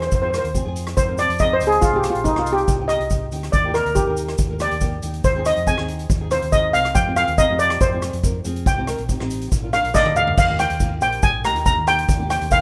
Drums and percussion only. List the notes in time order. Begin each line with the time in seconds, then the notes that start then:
0.02 cross-stick, closed hi-hat
0.11 kick, closed hi-hat, shaker
0.34 cross-stick, closed hi-hat, shaker
0.45 closed hi-hat
0.55 kick, closed hi-hat, shaker
0.76 closed hi-hat, shaker
0.87 cross-stick, closed hi-hat
0.97 kick, closed hi-hat, shaker
1.18 cross-stick, closed hi-hat, shaker
1.30 closed hi-hat
1.39 kick, closed hi-hat, shaker
1.60 closed hi-hat, shaker
1.72 closed hi-hat
1.82 kick, closed hi-hat, shaker
2.03 cross-stick, closed hi-hat, shaker
2.15 closed hi-hat
2.25 kick, closed hi-hat, shaker
2.36 cross-stick
2.46 closed hi-hat, shaker
2.58 closed hi-hat
2.68 kick, closed hi-hat, shaker
2.89 cross-stick, closed hi-hat, shaker
3.01 closed hi-hat
3.10 kick, closed hi-hat, shaker
3.32 closed hi-hat, shaker
3.43 cross-stick, closed hi-hat
3.53 kick, closed hi-hat, shaker
3.74 cross-stick, closed hi-hat, shaker
3.86 closed hi-hat
3.95 kick, closed hi-hat, shaker
4.17 closed hi-hat, shaker
4.28 cross-stick, closed hi-hat
4.38 kick, closed hi-hat, shaker
4.60 cross-stick, closed hi-hat, shaker
4.71 closed hi-hat
4.81 kick, closed hi-hat, shaker
5.02 closed hi-hat, shaker
5.14 closed hi-hat
5.24 kick, closed hi-hat, shaker
5.45 cross-stick, closed hi-hat, shaker
5.57 closed hi-hat
5.66 kick, closed hi-hat, shaker
5.78 cross-stick
5.88 closed hi-hat
5.99 closed hi-hat
6.09 kick, closed hi-hat, shaker
6.31 cross-stick, closed hi-hat, shaker
6.42 closed hi-hat
6.53 kick, closed hi-hat, shaker
6.74 closed hi-hat, shaker
6.85 cross-stick, closed hi-hat
6.95 kick, closed hi-hat, shaker
7.16 cross-stick, closed hi-hat, shaker
7.28 closed hi-hat
7.38 kick, closed hi-hat, shaker
7.59 closed hi-hat, shaker
7.70 cross-stick, closed hi-hat
7.81 kick, closed hi-hat, shaker
8.02 cross-stick, closed hi-hat, shaker
8.13 closed hi-hat
8.23 kick, closed hi-hat, shaker
8.45 closed hi-hat, shaker
8.56 closed hi-hat
8.66 kick, closed hi-hat, shaker
8.87 cross-stick, closed hi-hat, shaker
8.98 closed hi-hat
9.09 kick, closed hi-hat, shaker
9.20 cross-stick
9.30 closed hi-hat, shaker
9.41 closed hi-hat
9.52 kick, closed hi-hat, shaker
9.73 cross-stick, closed hi-hat, shaker
9.84 closed hi-hat
9.94 kick, snare, shaker
10.06 high tom
10.16 mid tom, shaker
10.27 floor tom
10.37 kick, crash, shaker
10.59 cross-stick, closed hi-hat, shaker
10.70 closed hi-hat
10.80 kick, closed hi-hat, shaker
11.01 closed hi-hat, shaker
11.12 closed hi-hat
11.23 kick, closed hi-hat, shaker
11.44 cross-stick, closed hi-hat, shaker
11.56 closed hi-hat
11.66 kick, closed hi-hat, shaker
11.87 cross-stick, closed hi-hat, shaker
11.98 closed hi-hat
12.09 kick, closed hi-hat, shaker
12.30 cross-stick, closed hi-hat, shaker
12.41 closed hi-hat
12.51 kick, closed hi-hat, shaker